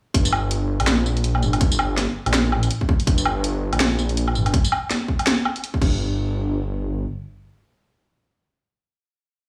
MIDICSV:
0, 0, Header, 1, 3, 480
1, 0, Start_track
1, 0, Key_signature, -2, "minor"
1, 0, Tempo, 365854
1, 189, Time_signature, 4, 2, 24, 8
1, 12438, End_track
2, 0, Start_track
2, 0, Title_t, "Detuned saw bass"
2, 0, Program_c, 0, 39
2, 190, Note_on_c, 0, 31, 99
2, 1031, Note_off_c, 0, 31, 0
2, 1048, Note_on_c, 0, 34, 99
2, 1376, Note_off_c, 0, 34, 0
2, 1388, Note_on_c, 0, 34, 93
2, 1869, Note_on_c, 0, 31, 103
2, 1889, Note_off_c, 0, 34, 0
2, 2711, Note_off_c, 0, 31, 0
2, 2968, Note_on_c, 0, 34, 102
2, 3308, Note_on_c, 0, 33, 104
2, 3328, Note_off_c, 0, 34, 0
2, 3532, Note_off_c, 0, 33, 0
2, 4032, Note_on_c, 0, 31, 103
2, 4872, Note_off_c, 0, 31, 0
2, 4886, Note_on_c, 0, 34, 101
2, 5215, Note_off_c, 0, 34, 0
2, 5229, Note_on_c, 0, 34, 96
2, 5708, Note_on_c, 0, 31, 101
2, 5728, Note_off_c, 0, 34, 0
2, 5932, Note_off_c, 0, 31, 0
2, 7631, Note_on_c, 0, 31, 98
2, 9257, Note_off_c, 0, 31, 0
2, 12438, End_track
3, 0, Start_track
3, 0, Title_t, "Drums"
3, 189, Note_on_c, 9, 36, 120
3, 191, Note_on_c, 9, 42, 83
3, 320, Note_off_c, 9, 36, 0
3, 322, Note_off_c, 9, 42, 0
3, 330, Note_on_c, 9, 54, 68
3, 427, Note_on_c, 9, 77, 86
3, 461, Note_off_c, 9, 54, 0
3, 558, Note_off_c, 9, 77, 0
3, 668, Note_on_c, 9, 42, 70
3, 799, Note_off_c, 9, 42, 0
3, 1048, Note_on_c, 9, 42, 39
3, 1048, Note_on_c, 9, 77, 39
3, 1146, Note_off_c, 9, 42, 0
3, 1146, Note_on_c, 9, 38, 118
3, 1146, Note_on_c, 9, 42, 84
3, 1179, Note_off_c, 9, 77, 0
3, 1277, Note_off_c, 9, 38, 0
3, 1277, Note_off_c, 9, 42, 0
3, 1390, Note_on_c, 9, 54, 36
3, 1521, Note_off_c, 9, 54, 0
3, 1532, Note_on_c, 9, 42, 39
3, 1628, Note_off_c, 9, 42, 0
3, 1628, Note_on_c, 9, 42, 69
3, 1759, Note_off_c, 9, 42, 0
3, 1769, Note_on_c, 9, 77, 39
3, 1869, Note_on_c, 9, 54, 36
3, 1901, Note_off_c, 9, 77, 0
3, 2000, Note_off_c, 9, 54, 0
3, 2011, Note_on_c, 9, 42, 39
3, 2011, Note_on_c, 9, 77, 37
3, 2109, Note_on_c, 9, 36, 125
3, 2110, Note_off_c, 9, 42, 0
3, 2110, Note_on_c, 9, 42, 85
3, 2142, Note_off_c, 9, 77, 0
3, 2240, Note_off_c, 9, 36, 0
3, 2241, Note_off_c, 9, 42, 0
3, 2251, Note_on_c, 9, 54, 64
3, 2348, Note_on_c, 9, 77, 80
3, 2383, Note_off_c, 9, 54, 0
3, 2480, Note_off_c, 9, 77, 0
3, 2592, Note_on_c, 9, 38, 65
3, 2592, Note_on_c, 9, 42, 72
3, 2723, Note_off_c, 9, 38, 0
3, 2723, Note_off_c, 9, 42, 0
3, 2969, Note_on_c, 9, 42, 40
3, 2969, Note_on_c, 9, 77, 38
3, 3067, Note_off_c, 9, 42, 0
3, 3067, Note_on_c, 9, 38, 127
3, 3067, Note_on_c, 9, 42, 84
3, 3100, Note_off_c, 9, 77, 0
3, 3198, Note_off_c, 9, 38, 0
3, 3198, Note_off_c, 9, 42, 0
3, 3310, Note_on_c, 9, 77, 53
3, 3442, Note_off_c, 9, 77, 0
3, 3449, Note_on_c, 9, 42, 38
3, 3449, Note_on_c, 9, 54, 37
3, 3550, Note_off_c, 9, 42, 0
3, 3550, Note_on_c, 9, 42, 68
3, 3580, Note_off_c, 9, 54, 0
3, 3682, Note_off_c, 9, 42, 0
3, 3689, Note_on_c, 9, 36, 66
3, 3789, Note_off_c, 9, 36, 0
3, 3789, Note_on_c, 9, 36, 116
3, 3920, Note_off_c, 9, 36, 0
3, 3932, Note_on_c, 9, 42, 39
3, 4030, Note_on_c, 9, 36, 126
3, 4032, Note_off_c, 9, 42, 0
3, 4032, Note_on_c, 9, 42, 84
3, 4161, Note_off_c, 9, 36, 0
3, 4163, Note_off_c, 9, 42, 0
3, 4170, Note_on_c, 9, 54, 64
3, 4271, Note_on_c, 9, 77, 78
3, 4301, Note_off_c, 9, 54, 0
3, 4402, Note_off_c, 9, 77, 0
3, 4513, Note_on_c, 9, 42, 71
3, 4644, Note_off_c, 9, 42, 0
3, 4889, Note_on_c, 9, 42, 38
3, 4889, Note_on_c, 9, 77, 37
3, 4989, Note_off_c, 9, 42, 0
3, 4989, Note_on_c, 9, 38, 127
3, 4989, Note_on_c, 9, 42, 84
3, 5020, Note_off_c, 9, 77, 0
3, 5120, Note_off_c, 9, 38, 0
3, 5120, Note_off_c, 9, 42, 0
3, 5230, Note_on_c, 9, 54, 35
3, 5361, Note_off_c, 9, 54, 0
3, 5370, Note_on_c, 9, 42, 39
3, 5474, Note_off_c, 9, 42, 0
3, 5474, Note_on_c, 9, 42, 67
3, 5605, Note_off_c, 9, 42, 0
3, 5610, Note_on_c, 9, 77, 37
3, 5711, Note_on_c, 9, 54, 35
3, 5742, Note_off_c, 9, 77, 0
3, 5842, Note_off_c, 9, 54, 0
3, 5852, Note_on_c, 9, 42, 37
3, 5852, Note_on_c, 9, 77, 37
3, 5951, Note_on_c, 9, 36, 122
3, 5953, Note_off_c, 9, 42, 0
3, 5953, Note_on_c, 9, 42, 80
3, 5983, Note_off_c, 9, 77, 0
3, 6082, Note_off_c, 9, 36, 0
3, 6085, Note_off_c, 9, 42, 0
3, 6095, Note_on_c, 9, 54, 65
3, 6193, Note_on_c, 9, 77, 76
3, 6226, Note_off_c, 9, 54, 0
3, 6325, Note_off_c, 9, 77, 0
3, 6437, Note_on_c, 9, 38, 64
3, 6437, Note_on_c, 9, 42, 67
3, 6568, Note_off_c, 9, 38, 0
3, 6568, Note_off_c, 9, 42, 0
3, 6670, Note_on_c, 9, 36, 64
3, 6801, Note_off_c, 9, 36, 0
3, 6814, Note_on_c, 9, 42, 38
3, 6814, Note_on_c, 9, 77, 36
3, 6913, Note_off_c, 9, 42, 0
3, 6913, Note_on_c, 9, 38, 127
3, 6913, Note_on_c, 9, 42, 81
3, 6945, Note_off_c, 9, 77, 0
3, 7044, Note_off_c, 9, 38, 0
3, 7044, Note_off_c, 9, 42, 0
3, 7156, Note_on_c, 9, 77, 52
3, 7287, Note_off_c, 9, 77, 0
3, 7293, Note_on_c, 9, 42, 37
3, 7395, Note_off_c, 9, 42, 0
3, 7395, Note_on_c, 9, 42, 66
3, 7527, Note_off_c, 9, 42, 0
3, 7529, Note_on_c, 9, 36, 66
3, 7630, Note_off_c, 9, 36, 0
3, 7630, Note_on_c, 9, 36, 115
3, 7634, Note_on_c, 9, 49, 87
3, 7761, Note_off_c, 9, 36, 0
3, 7765, Note_off_c, 9, 49, 0
3, 12438, End_track
0, 0, End_of_file